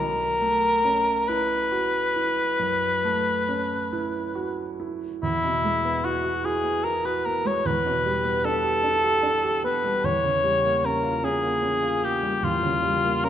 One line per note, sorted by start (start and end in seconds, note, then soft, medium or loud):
0.00 2.56 B1 soft
0.00 1.30 A#4 loud
0.41 1.11 A3 soft
0.85 1.55 C#4 soft
1.28 1.98 E4 soft
1.28 4.79 B4 medium
1.72 2.42 F#4 soft
2.16 2.86 E4 soft
2.59 3.30 F#2 soft
3.05 3.74 A3 soft
3.48 4.18 C#4 soft
3.93 4.62 E4 soft
4.35 5.06 F#4 soft
4.80 5.23 E4 soft
5.23 7.61 E2 soft
5.23 6.06 E4 medium
5.44 5.77 B2 soft
5.64 5.97 G#3 soft
5.85 6.17 B3 soft
6.04 6.37 E4 soft
6.04 6.47 F#4 medium
6.24 6.56 F#4 soft
6.44 6.77 E4 soft
6.44 6.86 G#4 medium
6.64 6.96 B3 soft
6.85 7.17 E4 soft
6.85 7.07 A#4 medium
7.05 7.37 F#4 soft
7.05 7.27 B4 medium
7.26 7.57 B3 soft
7.26 7.48 A#4 medium
7.45 7.65 G#3 soft
7.45 7.68 C#5 medium
7.65 10.00 E2 medium
7.65 8.47 B4 medium
7.85 8.17 B2 soft
8.06 8.36 G3 soft
8.24 8.56 B3 soft
8.45 8.76 D4 soft
8.45 9.64 A4 medium
8.63 8.95 G4 soft
8.83 9.15 D4 soft
9.03 9.35 G4 soft
9.23 9.55 D4 soft
9.43 9.76 G4 soft
9.64 9.96 B3 soft
9.64 10.06 B4 medium
9.84 10.04 G3 soft
10.04 12.40 E2 soft
10.04 10.87 C#5 medium
10.24 10.56 C#3 soft
10.44 10.76 G3 soft
10.64 10.97 A#3 soft
10.84 11.17 C#4 soft
10.84 11.26 A#4 medium
11.03 11.36 F4 soft
11.24 11.56 C#4 medium
11.24 12.06 G#4 medium
11.43 11.76 A#3 soft
11.63 11.95 C#4 soft
11.82 12.15 F4 soft
12.02 12.35 A#3 soft
12.02 12.45 G4 medium
12.23 12.56 G3 soft
12.42 13.29 E2 soft
12.42 13.26 F4 medium
12.63 12.96 C#3 soft
12.83 13.16 G3 medium
13.04 13.29 A#3 soft
13.24 13.29 C#4 soft
13.24 13.29 A#4 medium